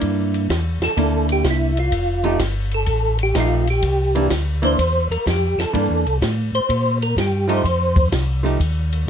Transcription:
Already playing: hollow-body jazz guitar A#3 D4 E4
0.01 tonewheel organ G2, kick, ride
0.34 ride
0.49 tonewheel organ E2, kick, snare, hi-hat pedal, ride
0.80 tonewheel organ E2 A4, snare, ride
0.97 tonewheel organ D2, hollow-body jazz guitar A#3 D4 E4, kick, ride
1.29 tonewheel organ G4, ride
1.44 tonewheel organ C2, kick, snare, hi-hat pedal, ride
1.51 tonewheel organ E4
1.77 tonewheel organ F4, ride
1.91 tonewheel organ F1, kick, ride
2.24 hollow-body jazz guitar F3 A3 D#4 G4, ride
2.39 tonewheel organ G1, kick, snare, hi-hat pedal, ride
2.71 tonewheel organ A4, ride
2.86 tonewheel organ A1, kick, ride
3.19 ride
3.23 tonewheel organ G4
3.35 tonewheel organ A#1, hollow-body jazz guitar F3 A3 D#4 G4, kick, snare, hi-hat pedal, ride
3.40 tonewheel organ F4
3.67 tonewheel organ G4, ride
3.82 tonewheel organ C2, kick, ride
4.15 hollow-body jazz guitar E3 A#3 D4, ride
4.30 tonewheel organ D2, kick, snare, hi-hat pedal, ride
4.62 hollow-body jazz guitar E3 A#3 D4, tonewheel organ C5, ride
4.79 tonewheel organ E2, kick, ride
5.10 tonewheel organ E2 A#4, ride
5.26 tonewheel organ F2, kick, snare, hi-hat pedal, ride
5.30 tonewheel organ G4
5.58 tonewheel organ F2 A4, snare, ride
5.73 tonewheel organ G2, hollow-body jazz guitar E3 A#3 D4, kick, ride
5.90 tonewheel organ E2
6.06 tonewheel organ C2, ride
6.22 tonewheel organ A2, kick, snare, hi-hat pedal, ride
6.53 tonewheel organ A2 C5, ride
6.69 tonewheel organ A#2, kick, ride
7.02 tonewheel organ A#4, ride
7.16 tonewheel organ G2, kick, snare, hi-hat pedal, ride
7.21 tonewheel organ G4
7.48 hollow-body jazz guitar F3 A3 D#4 G4, tonewheel organ C5, ride
7.64 tonewheel organ F2, kick, ride
7.96 kick, ride
8.12 tonewheel organ C2, kick, snare, hi-hat pedal, ride
8.43 hollow-body jazz guitar F3 A3 D#4 G4, ride
8.60 tonewheel organ D#2, kick, ride
8.92 ride

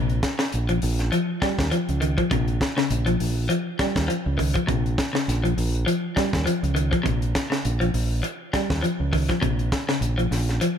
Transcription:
Already playing: fingered electric bass A#1, clean electric guitar C3
0.10 closed hi-hat
0.23 kick, snare, closed hi-hat
0.39 muted clean electric guitar stroke, snare
0.52 fingered electric bass A#1, closed hi-hat
0.69 clean electric guitar F3, closed hi-hat
0.82 fingered electric bass A#1, open hi-hat
0.99 snare, closed hi-hat
1.12 clean electric guitar F3, closed hi-hat
1.42 clean electric guitar G3, kick, snare, closed hi-hat
1.58 fingered electric bass D#2, kick, snare, closed hi-hat
1.71 clean electric guitar F3, closed hi-hat
1.89 fingered electric bass C#2, closed hi-hat
2.01 clean electric guitar D#3, closed hi-hat
2.18 clean electric guitar F3, kick, closed hi-hat
2.31 fingered electric bass A#1, clean electric guitar C3, kick, closed hi-hat
2.48 closed hi-hat
2.61 kick, snare, closed hi-hat
2.77 clean electric guitar C#3, snare
2.90 fingered electric bass A#1, closed hi-hat
3.06 clean electric guitar F3, closed hi-hat
3.20 fingered electric bass A#1, open hi-hat
3.49 clean electric guitar F3, closed hi-hat
3.79 clean electric guitar G3, kick, snare, closed hi-hat
3.96 fingered electric bass D#2, kick, snare, closed hi-hat
4.08 clean electric guitar F3, closed hi-hat
4.26 fingered electric bass C#2
4.38 clean electric guitar D#3, kick, open hi-hat
4.54 clean electric guitar F3, kick, closed hi-hat
4.67 fingered electric bass A#1, clean electric guitar C3, kick, closed hi-hat
4.86 closed hi-hat
4.98 kick, snare, closed hi-hat
5.13 clean electric guitar C#3, snare
5.28 fingered electric bass A#1, snare, closed hi-hat
5.44 clean electric guitar F3, closed hi-hat
5.57 fingered electric bass A#1, open hi-hat
5.75 closed hi-hat
5.86 clean electric guitar F3, closed hi-hat
6.16 clean electric guitar G3, kick, snare, closed hi-hat
6.33 fingered electric bass D#2, kick, snare, closed hi-hat
6.46 clean electric guitar F3, closed hi-hat
6.63 fingered electric bass C#2, closed hi-hat
6.75 clean electric guitar D#3, closed hi-hat
6.91 clean electric guitar F3, kick, closed hi-hat
7.03 fingered electric bass A#1, clean electric guitar C3, kick, closed hi-hat
7.22 closed hi-hat
7.35 kick, snare, closed hi-hat
7.50 clean electric guitar C#3, snare
7.65 fingered electric bass A#1, closed hi-hat
7.80 clean electric guitar F3, closed hi-hat
7.94 fingered electric bass A#1, open hi-hat
8.23 muted clean electric guitar stroke, closed hi-hat
8.53 clean electric guitar G3, kick, snare, closed hi-hat
8.70 fingered electric bass D#2, kick, snare, closed hi-hat
8.83 clean electric guitar F3, closed hi-hat
9.00 fingered electric bass C#2
9.13 clean electric guitar D#3, kick, open hi-hat
9.29 clean electric guitar F3, kick, snare, closed hi-hat
9.42 fingered electric bass A#1, clean electric guitar C3, kick, closed hi-hat
9.59 closed hi-hat
9.72 kick, snare, closed hi-hat
9.89 clean electric guitar C#3, snare
10.01 fingered electric bass A#1, closed hi-hat
10.18 clean electric guitar F3, closed hi-hat
10.31 fingered electric bass A#1, snare, open hi-hat
10.49 snare, closed hi-hat
10.61 clean electric guitar F3, closed hi-hat

